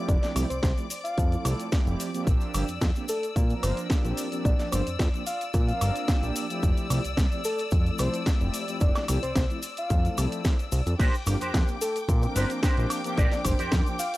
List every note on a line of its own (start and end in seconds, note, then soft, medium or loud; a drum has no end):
0.00 0.33 F3 medium
0.00 0.33 A3 medium
0.00 0.33 C4 medium
0.00 0.33 E4 medium
0.00 0.33 G4 loud
0.00 2.26 D5 medium
0.00 2.28 D6 medium
0.08 0.18 F1 medium
0.08 0.17 D5 medium
0.08 kick loud
0.08 closed hi-hat soft
0.08 cabasa medium
0.08 shaker soft
0.22 0.31 D5 medium
0.22 snare soft
0.22 closed hi-hat soft
0.22 cabasa soft
0.35 0.45 C2 medium
0.35 0.46 F3 loud
0.35 0.46 A3 medium
0.35 0.46 C4 medium
0.35 0.46 E4 medium
0.35 0.46 G4 loud
0.35 open hi-hat loud
0.35 cabasa medium
0.35 high woodblock medium
0.35 shaker medium
0.50 0.61 C2 soft
0.50 0.58 C5 medium
0.50 closed hi-hat soft
0.50 cabasa soft
0.50 shaker soft
0.62 0.73 C2 medium
0.62 0.72 C5 medium
0.62 kick loud
0.62 snare loud
0.62 closed hi-hat soft
0.62 cabasa soft
0.62 shaker soft
0.77 0.86 F3 medium
0.77 0.86 A3 medium
0.77 0.86 C4 medium
0.77 0.86 E4 medium
0.77 0.87 G4 medium
0.77 closed hi-hat soft
0.77 cabasa soft
0.90 open hi-hat medium
0.90 cabasa medium
0.90 shaker medium
1.04 1.45 F5 medium
1.04 closed hi-hat soft
1.04 cabasa soft
1.04 shaker soft
1.18 1.36 F2 medium
1.18 kick loud
1.18 closed hi-hat soft
1.18 cabasa medium
1.18 shaker soft
1.31 1.69 F3 medium
1.31 1.69 A3 medium
1.31 1.69 C4 medium
1.31 1.69 E4 medium
1.31 1.69 A4 medium
1.31 closed hi-hat soft
1.31 cabasa soft
1.45 1.54 C2 medium
1.45 open hi-hat loud
1.45 cabasa medium
1.45 high woodblock medium
1.45 shaker medium
1.60 closed hi-hat soft
1.60 cabasa soft
1.60 shaker soft
1.72 2.10 F3 medium
1.72 2.10 A3 medium
1.72 2.11 E4 medium
1.72 2.11 G4 medium
1.72 kick loud
1.72 snare loud
1.72 closed hi-hat soft
1.72 cabasa soft
1.72 shaker soft
1.87 1.95 F1 medium
1.87 closed hi-hat soft
1.87 cabasa soft
2.00 open hi-hat medium
2.00 cabasa medium
2.00 shaker medium
2.14 2.51 F3 medium
2.14 2.51 A#3 medium
2.14 2.51 C4 medium
2.14 2.51 D4 medium
2.14 2.51 G4 loud
2.14 closed hi-hat soft
2.14 cabasa soft
2.14 shaker soft
2.27 2.36 A#1 medium
2.27 11.01 D5 medium
2.27 11.01 E6 medium
2.27 kick loud
2.27 closed hi-hat soft
2.27 cabasa medium
2.27 shaker soft
2.41 closed hi-hat soft
2.41 cabasa soft
2.54 2.64 G1 medium
2.54 2.64 F3 loud
2.54 2.64 A#3 loud
2.54 2.64 C4 medium
2.54 2.64 D4 medium
2.54 2.64 G4 loud
2.54 open hi-hat loud
2.54 cabasa medium
2.54 high woodblock medium
2.54 shaker medium
2.68 2.79 F2 soft
2.68 closed hi-hat soft
2.68 cabasa soft
2.68 shaker soft
2.81 2.91 F2 medium
2.81 kick loud
2.81 snare loud
2.81 closed hi-hat soft
2.81 cabasa soft
2.81 shaker soft
2.95 3.04 F3 medium
2.95 3.05 A#3 medium
2.95 3.05 C4 medium
2.95 3.05 D4 medium
2.95 3.05 G4 medium
2.95 closed hi-hat soft
2.95 cabasa soft
3.08 3.26 A4 medium
3.08 open hi-hat medium
3.08 cabasa loud
3.08 shaker medium
3.23 closed hi-hat soft
3.23 cabasa soft
3.23 shaker soft
3.36 3.54 A#2 medium
3.36 kick loud
3.36 closed hi-hat soft
3.36 cabasa soft
3.36 shaker soft
3.49 3.87 F3 medium
3.49 3.87 A#3 medium
3.49 3.87 C4 medium
3.49 3.87 D4 medium
3.49 3.88 A#4 medium
3.49 closed hi-hat soft
3.49 cabasa soft
3.63 3.73 G1 medium
3.63 3.80 C5 medium
3.63 open hi-hat loud
3.63 cabasa medium
3.63 high woodblock medium
3.63 shaker medium
3.77 closed hi-hat soft
3.77 cabasa soft
3.77 shaker soft
3.89 4.28 F3 medium
3.89 4.28 C4 medium
3.89 4.29 D4 medium
3.89 4.29 G4 medium
3.89 kick loud
3.89 snare loud
3.89 closed hi-hat soft
3.89 cabasa soft
3.89 shaker soft
4.05 4.13 A#1 medium
4.05 closed hi-hat soft
4.05 cabasa soft
4.17 open hi-hat medium
4.17 cabasa medium
4.17 shaker medium
4.31 4.69 F3 medium
4.31 4.69 A#3 medium
4.31 4.69 C4 medium
4.31 4.69 D4 medium
4.31 4.69 G4 medium
4.31 closed hi-hat soft
4.31 cabasa soft
4.31 shaker soft
4.45 4.54 A#1 medium
4.45 4.54 D5 medium
4.45 kick loud
4.45 closed hi-hat soft
4.45 cabasa medium
4.45 shaker soft
4.59 4.68 D5 medium
4.59 snare soft
4.59 closed hi-hat soft
4.59 cabasa soft
4.71 4.82 G1 medium
4.71 4.82 F3 loud
4.71 4.82 A#3 loud
4.71 4.82 C4 medium
4.71 4.82 D4 medium
4.71 4.82 G4 loud
4.71 4.89 C5 medium
4.71 open hi-hat medium
4.71 cabasa medium
4.71 high woodblock medium
4.71 shaker medium
4.87 4.97 F2 soft
4.87 closed hi-hat medium
4.87 cabasa soft
4.87 shaker soft
4.99 5.09 F2 medium
4.99 kick loud
4.99 snare loud
4.99 closed hi-hat soft
4.99 cabasa soft
4.99 shaker soft
5.13 5.22 F3 medium
5.13 5.22 A#3 medium
5.13 5.23 C4 medium
5.13 5.23 D4 medium
5.13 5.23 G4 loud
5.13 closed hi-hat soft
5.13 cabasa soft
5.26 5.44 F5 medium
5.26 open hi-hat medium
5.26 cabasa medium
5.26 shaker medium
5.41 closed hi-hat soft
5.41 cabasa soft
5.41 shaker soft
5.54 5.72 A#2 medium
5.54 kick loud
5.54 closed hi-hat soft
5.54 cabasa medium
5.54 shaker soft
5.67 6.05 F3 medium
5.67 6.05 A#3 medium
5.67 6.05 C4 medium
5.67 6.05 D4 medium
5.67 6.05 A#4 medium
5.67 6.23 F5 medium
5.67 closed hi-hat soft
5.67 cabasa soft
5.81 5.91 G1 medium
5.81 open hi-hat loud
5.81 cabasa medium
5.81 high woodblock medium
5.81 shaker medium
5.96 closed hi-hat soft
5.96 cabasa soft
5.96 shaker soft
6.08 6.46 F3 medium
6.08 6.47 A#3 medium
6.08 6.47 D4 medium
6.08 6.47 G4 loud
6.08 kick loud
6.08 snare loud
6.08 closed hi-hat soft
6.08 cabasa soft
6.08 shaker soft
6.23 6.31 A#1 medium
6.23 closed hi-hat soft
6.23 cabasa soft
6.36 open hi-hat medium
6.36 cabasa medium
6.36 shaker medium
6.50 6.87 F3 medium
6.50 6.87 A3 medium
6.50 6.87 C4 medium
6.50 6.87 E4 medium
6.50 6.88 G4 loud
6.50 closed hi-hat soft
6.50 cabasa soft
6.50 shaker soft
6.63 6.72 F1 medium
6.63 kick loud
6.63 closed hi-hat soft
6.63 cabasa soft
6.63 shaker soft
6.77 closed hi-hat soft
6.77 cabasa soft
6.90 7.00 C2 loud
6.90 7.00 F3 loud
6.90 7.00 A3 medium
6.90 7.00 C4 loud
6.90 7.00 E4 medium
6.90 7.00 G4 loud
6.90 open hi-hat loud
6.90 cabasa medium
6.90 high woodblock medium
6.90 shaker medium
7.05 7.15 C2 soft
7.05 closed hi-hat medium
7.05 cabasa soft
7.05 shaker soft
7.17 7.27 C2 medium
7.17 kick loud
7.17 snare loud
7.17 closed hi-hat medium
7.17 cabasa medium
7.17 shaker soft
7.32 7.41 F3 medium
7.32 7.41 A3 medium
7.32 7.41 C4 medium
7.32 7.41 E4 medium
7.32 7.41 G4 loud
7.32 closed hi-hat soft
7.32 cabasa soft
7.44 7.62 A4 loud
7.44 open hi-hat medium
7.44 cabasa medium
7.44 shaker medium
7.58 closed hi-hat medium
7.58 cabasa soft
7.58 shaker soft
7.71 7.90 F2 medium
7.71 kick loud
7.71 closed hi-hat medium
7.71 cabasa soft
7.71 shaker soft
7.86 8.23 F3 medium
7.86 8.24 A3 medium
7.86 8.24 C4 medium
7.86 8.24 E4 medium
7.86 8.24 A4 medium
7.86 closed hi-hat soft
7.86 cabasa soft
7.98 8.09 C2 medium
7.98 8.17 C5 medium
7.98 open hi-hat loud
7.98 cabasa medium
7.98 high woodblock medium
7.98 shaker medium
8.14 closed hi-hat medium
8.14 cabasa soft
8.14 shaker soft
8.26 8.65 A3 medium
8.26 8.65 G4 loud
8.26 kick loud
8.26 snare loud
8.26 closed hi-hat soft
8.26 cabasa soft
8.26 shaker soft
8.41 8.50 F1 medium
8.41 closed hi-hat soft
8.41 cabasa soft
8.54 open hi-hat medium
8.54 cabasa medium
8.54 shaker medium
8.68 9.05 F3 medium
8.68 9.05 A3 medium
8.68 9.05 C4 medium
8.68 9.06 E4 medium
8.68 9.06 G4 medium
8.68 closed hi-hat soft
8.68 cabasa soft
8.68 shaker soft
8.80 8.91 F1 medium
8.80 8.90 D5 medium
8.80 kick loud
8.80 closed hi-hat medium
8.80 cabasa medium
8.80 shaker soft
8.95 9.04 D5 medium
8.95 snare soft
8.95 closed hi-hat soft
8.95 cabasa soft
8.95 high woodblock medium
9.07 9.18 C2 loud
9.07 9.18 F3 loud
9.07 9.18 A3 loud
9.07 9.18 C4 medium
9.07 9.18 E4 medium
9.07 9.19 G4 loud
9.07 open hi-hat loud
9.07 cabasa loud
9.07 high woodblock medium
9.07 shaker medium
9.22 9.34 C2 soft
9.22 9.31 C5 medium
9.22 closed hi-hat medium
9.22 cabasa soft
9.22 shaker soft
9.36 9.45 C2 medium
9.36 9.45 C5 medium
9.36 kick loud
9.36 snare loud
9.36 closed hi-hat medium
9.36 cabasa medium
9.36 shaker soft
9.50 9.59 F3 medium
9.50 9.59 A3 medium
9.50 9.59 C4 medium
9.50 9.59 E4 medium
9.50 9.59 G4 medium
9.50 closed hi-hat soft
9.50 cabasa soft
9.63 open hi-hat medium
9.63 cabasa medium
9.63 shaker medium
9.77 10.18 F5 medium
9.77 closed hi-hat medium
9.77 cabasa soft
9.77 shaker soft
9.90 10.09 F2 medium
9.90 kick loud
9.90 closed hi-hat medium
9.90 cabasa soft
9.90 shaker soft
10.04 10.42 F3 medium
10.04 10.42 A3 medium
10.04 10.42 C4 medium
10.04 10.42 E4 medium
10.04 10.42 A4 medium
10.04 closed hi-hat soft
10.04 cabasa soft
10.18 10.27 C2 medium
10.18 open hi-hat loud
10.18 cabasa medium
10.18 high woodblock medium
10.18 shaker medium
10.32 closed hi-hat medium
10.32 cabasa soft
10.32 shaker soft
10.44 10.54 F3 medium
10.44 10.54 A3 medium
10.44 10.55 E4 medium
10.44 kick loud
10.44 snare loud
10.44 closed hi-hat medium
10.44 cabasa medium
10.44 shaker soft
10.59 closed hi-hat soft
10.59 cabasa soft
10.72 10.82 C2 loud
10.72 open hi-hat medium
10.72 cabasa medium
10.72 shaker medium
10.86 10.95 F2 medium
10.86 closed hi-hat medium
10.86 cabasa soft
10.86 shaker soft
10.99 11.09 A#1 medium
10.99 11.13 D4 loud
10.99 11.14 G4 loud
10.99 11.14 A#4 loud
10.99 11.14 C5 loud
10.99 14.17 G5 medium
10.99 14.17 D6 medium
10.99 kick loud
10.99 closed hi-hat medium
10.99 crash medium
10.99 cabasa soft
10.99 shaker soft
11.14 closed hi-hat soft
11.14 cabasa soft
11.26 11.36 G1 loud
11.26 11.36 F3 loud
11.26 11.36 A#3 loud
11.26 11.36 C4 medium
11.26 11.36 D4 medium
11.26 11.37 G4 loud
11.26 muted clean electric guitar stroke soft
11.26 open hi-hat loud
11.26 cabasa medium
11.26 high woodblock medium
11.26 shaker medium
11.40 11.52 F2 soft
11.40 11.68 D4 medium
11.40 11.68 G4 medium
11.40 11.69 A#4 medium
11.40 11.69 C5 loud
11.40 closed hi-hat medium
11.40 cabasa soft
11.40 shaker soft
11.54 11.63 F2 medium
11.54 kick loud
11.54 snare loud
11.54 closed hi-hat medium
11.54 cabasa soft
11.54 shaker soft
11.67 11.77 F3 medium
11.67 11.77 A#3 medium
11.67 11.77 C4 medium
11.67 11.77 D4 medium
11.67 11.77 G4 loud
11.67 closed hi-hat soft
11.67 cabasa soft
11.81 11.99 A4 medium
11.81 open hi-hat medium
11.81 cabasa medium
11.81 shaker medium
11.95 muted clean electric guitar stroke soft
11.95 closed hi-hat medium
11.95 cabasa soft
11.95 shaker soft
12.08 12.27 A#2 loud
12.08 kick loud
12.08 closed hi-hat medium
12.08 cabasa medium
12.08 shaker soft
12.22 12.60 F3 medium
12.22 12.60 A#3 medium
12.22 12.60 C4 medium
12.22 12.60 D4 medium
12.22 12.60 A#4 medium
12.22 muted clean electric guitar stroke loud
12.22 closed hi-hat soft
12.22 cabasa soft
12.35 12.45 G1 medium
12.35 12.50 D4 medium
12.35 12.50 G4 medium
12.35 12.50 A#4 medium
12.35 12.53 C5 medium
12.35 12.51 C5 loud
12.35 open hi-hat loud
12.35 cabasa medium
12.35 shaker medium
12.50 closed hi-hat medium
12.50 cabasa soft
12.50 shaker soft
12.62 13.01 C4 medium
12.62 12.90 D4 medium
12.62 12.90 G4 medium
12.62 13.02 G4 loud
12.62 12.91 A#4 medium
12.62 12.91 C5 loud
12.62 kick loud
12.62 snare loud
12.62 closed hi-hat medium
12.62 cabasa medium
12.62 shaker soft
12.77 12.86 A#1 medium
12.77 closed hi-hat soft
12.77 cabasa soft
12.90 open hi-hat medium
12.90 cabasa medium
12.90 high woodblock medium
12.90 shaker medium
13.04 13.42 F3 medium
13.04 13.42 A#3 medium
13.04 13.42 C4 medium
13.04 13.42 D4 medium
13.04 13.42 G4 loud
13.04 closed hi-hat medium
13.04 cabasa soft
13.04 shaker soft
13.17 13.27 A#1 medium
13.17 13.32 D4 loud
13.17 13.32 G4 loud
13.17 13.32 A#4 loud
13.17 13.27 D5 medium
13.17 13.32 D5 loud
13.17 kick loud
13.17 closed hi-hat soft
13.17 cabasa medium
13.17 shaker soft
13.31 13.40 D5 medium
13.31 snare soft
13.31 closed hi-hat soft
13.31 cabasa soft
13.44 13.54 G1 loud
13.44 13.55 F3 loud
13.44 13.55 A#3 loud
13.44 13.55 C4 loud
13.44 13.55 D4 loud
13.44 13.55 G4 loud
13.44 13.62 C5 medium
13.44 muted clean electric guitar stroke soft
13.44 kick medium
13.44 open hi-hat loud
13.44 cabasa medium
13.44 high woodblock medium
13.44 shaker medium
13.58 13.70 F2 soft
13.58 13.86 D4 loud
13.58 13.86 G4 medium
13.58 13.87 A#4 medium
13.58 13.87 C5 loud
13.58 closed hi-hat medium
13.58 cabasa soft
13.58 shaker soft
13.72 13.82 F2 medium
13.72 kick loud
13.72 snare loud
13.72 closed hi-hat medium
13.72 cabasa soft
13.72 shaker soft
13.86 13.95 F3 medium
13.86 13.95 A#3 medium
13.86 13.96 C4 medium
13.86 13.96 D4 medium
13.86 13.96 G4 loud
13.86 closed hi-hat soft
13.86 cabasa soft
13.99 14.16 F5 medium
13.99 open hi-hat medium
13.99 cabasa loud
13.99 shaker medium
14.13 muted clean electric guitar stroke soft
14.13 closed hi-hat soft
14.13 shaker soft